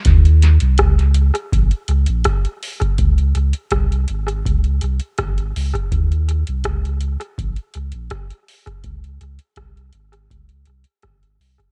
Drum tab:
HH |xxxxxxxxxxxxxxox|xxxxxxxxxxxxxxox|xxxxxxxxxxxxxxox|xxxxxxxxxxxxxxox|
SD |----r-------r---|----r-------r---|----r-------r---|----r-------r---|
BD |o---o---o---o--o|o---o---o---o--o|o---o---o---o--o|o---o---o---o--o|